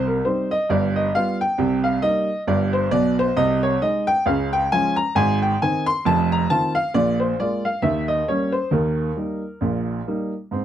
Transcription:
Already playing: C2 C3
0.07 A#4
0.25 G3 C4 D#4 C5
0.51 D#5
0.69 G1 G2 D5
0.96 D#5
1.14 G3 B3 F4 F5
1.41 G5
1.58 C2 C3
1.84 F5
2.02 G3 A#3 D#4 D#5
2.47 G1 G2 D5
2.73 C5
2.91 B1 B2 D5
3.19 C5
3.36 C2 C3 D#5
3.63 C#5
3.81 G#3 D#4 D#5
4.07 G5
4.26 C#2 C#3 F5
4.53 G5
4.72 F3 G#3 C#4 G#5
4.96 A#5
5.15 G#1 G#2 G#5
5.42 G5
5.62 D#3 C4 D#4 G#5
5.86 C6
6.05 F1 F2 A5
6.32 A#5
6.50 D#3 C4 F4 A5
6.75 F5
6.94 A#1 A#2 D5
7.20 C5
7.40 G#3 A#3 F4 D5
7.65 F5
7.82 D#2 D#3 E5
8.08 D#5
8.28 G3 A#3 C#4 C#5
8.52 C5
8.71 D#2 D#3 A#4
9.16 G3 A#3 D#4
9.61 A#1 A#2
10.07 G3 A#3 D#4
10.51 G#2 C4

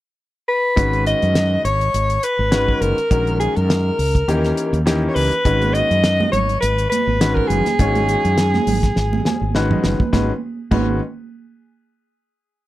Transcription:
0.48 B4
0.76 G#1 D#3 G#3 C#4 F#4 B4, kick, closed hi-hat
0.93 closed hi-hat
1.06 D#5, closed hi-hat
1.22 F#2, closed hi-hat
1.35 snare, closed hi-hat
1.65 G#1 C#5, closed hi-hat
1.81 closed hi-hat
1.94 G#1, closed hi-hat
2.10 closed hi-hat
2.23 B4, closed hi-hat
2.39 G#1
2.52 D#3 G#3 C#4 F#4 B4, snare, closed hi-hat
2.68 kick
2.81 F#1 A#4, closed hi-hat
2.98 closed hi-hat
3.11 A#1 D#3 G#3 C#4 F#4 A#4, kick, closed hi-hat
3.27 closed hi-hat
3.40 G#4, closed hi-hat
3.56 F#2 A#4, closed hi-hat
3.70 snare, closed hi-hat
3.99 C#2, open hi-hat
4.15 kick, closed hi-hat
4.28 D#2 E3 A#3 C#4 D#4 G4, closed hi-hat
4.45 snare, closed hi-hat
4.57 closed hi-hat
4.73 D#2, closed hi-hat
4.86 E3 A#3 C#4 D#4 G4, snare, closed hi-hat
5.08 C#5
5.15 C#2 B4, open hi-hat
5.32 closed hi-hat
5.45 G#1 D#3 G#3 C#4 F#4 B4, kick, closed hi-hat
5.62 closed hi-hat, high conga
5.74 D#5, closed hi-hat
5.91 F#2, closed hi-hat
6.04 snare, closed hi-hat
6.20 high conga
6.32 G#1 C#5, closed hi-hat, low conga
6.49 closed hi-hat
6.60 G#1 B4, closed hi-hat
6.78 closed hi-hat
6.90 B4, closed hi-hat, high conga
7.07 G#1
7.21 D#3 G#3 C#4 F#4 B4, snare, closed hi-hat
7.35 A#4, kick
7.48 F#1 G#4, closed hi-hat, low conga
7.66 snare, closed hi-hat, high conga
7.79 G#1 D#3 G#3 C#4 F#4 C#5, kick, closed hi-hat
7.95 closed hi-hat, high conga
8.09 closed hi-hat
8.25 F#2, closed hi-hat
8.38 snare, closed hi-hat
8.54 snare, high conga
8.67 G#1, open hi-hat, low conga
8.83 kick, snare, closed hi-hat
8.96 G#1, snare
9.13 high conga
9.25 G#5, snare, high conga
9.41 G#1
9.55 D#3 G#3 C#4 F#4 B4 F#5, snare
9.71 D#5, mid tom, low conga
9.84 F#1 B4, snare, low conga
10.00 muted fretless electric bass stroke, kick, high conga
10.13 G#1 D#3 G#3 C#4 F#4 B4, kick, snare, high conga
10.71 G#1 D#3 G#3 C#4 F#4 B4, kick, crash, high conga

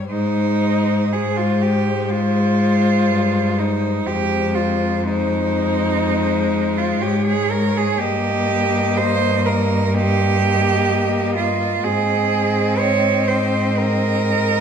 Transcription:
0.09 G#2 G#3 D#4 C5
1.11 G#3 G#4 C5
1.37 F4
1.62 G4
2.10 F4
3.08 G2
3.59 D#4
4.07 F2 G#3 G4 C5
4.55 F4
5.03 G#3 D#4 C5
6.77 F4
7.01 G#2 G4 C#5
7.27 G#4
7.51 A#4
7.77 G#4
7.98 G2 A#3 G4 D#5
8.97 C5
9.46 A#4
9.92 A#3 G4 D#5
11.36 F4
11.82 G#2 C4 G#4 D#5
12.79 C#5
13.28 C5
13.79 A#4

